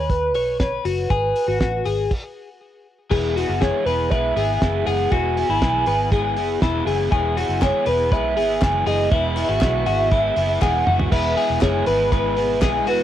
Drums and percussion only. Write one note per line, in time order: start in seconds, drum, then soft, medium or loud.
0.10 kick medium
0.10 closed hi-hat medium
0.35 open hi-hat medium
0.60 kick loud
0.60 snare medium
0.60 closed hi-hat medium
0.85 open hi-hat medium
1.10 kick loud
1.10 closed hi-hat medium
1.36 open hi-hat medium
1.61 kick medium
1.61 snare medium
1.61 closed hi-hat medium
1.86 open hi-hat medium
2.11 kick medium
2.11 crash medium
3.11 kick loud
3.11 crash medium
3.37 open hi-hat medium
3.62 kick medium
3.62 snare loud
3.62 closed hi-hat medium
3.86 open hi-hat medium
4.12 kick loud
4.12 closed hi-hat medium
4.37 open hi-hat medium
4.62 kick loud
4.62 snare loud
4.62 closed hi-hat medium
4.87 open hi-hat medium
5.12 kick loud
5.12 closed hi-hat medium
5.37 open hi-hat medium
5.62 kick medium
5.62 snare loud
5.62 closed hi-hat medium
5.86 open hi-hat medium
6.12 kick loud
6.12 closed hi-hat medium
6.37 open hi-hat medium
6.62 kick loud
6.62 snare loud
6.62 closed hi-hat medium
6.87 open hi-hat medium
7.12 kick loud
7.12 closed hi-hat medium
7.37 open hi-hat medium
7.62 kick loud
7.62 snare loud
7.62 clap medium
7.62 closed hi-hat medium
7.86 open hi-hat medium
8.12 kick loud
8.12 closed hi-hat medium
8.37 open hi-hat medium
8.62 kick loud
8.62 snare loud
8.62 clap medium
8.62 closed hi-hat medium
8.87 open hi-hat medium
9.12 kick loud
9.12 closed hi-hat medium
9.37 clap medium
9.37 open hi-hat medium
9.61 kick loud
9.61 snare loud
9.61 clap medium
9.61 closed hi-hat medium
9.86 open hi-hat medium
10.11 kick loud
10.11 closed hi-hat medium
10.36 open hi-hat medium
10.62 kick loud
10.62 snare medium
10.62 clap medium
10.87 mid tom medium
10.99 floor tom medium
11.12 kick loud
11.12 crash loud
11.37 open hi-hat medium
11.61 kick medium
11.61 snare loud
11.61 clap medium
11.61 hi-hat pedal medium
11.61 ride soft
11.86 open hi-hat medium
12.12 kick loud
12.12 hi-hat pedal medium
12.12 ride medium
12.37 open hi-hat medium
12.62 kick loud
12.62 snare loud
12.62 clap medium
12.62 hi-hat pedal medium
12.62 ride medium
12.87 open hi-hat medium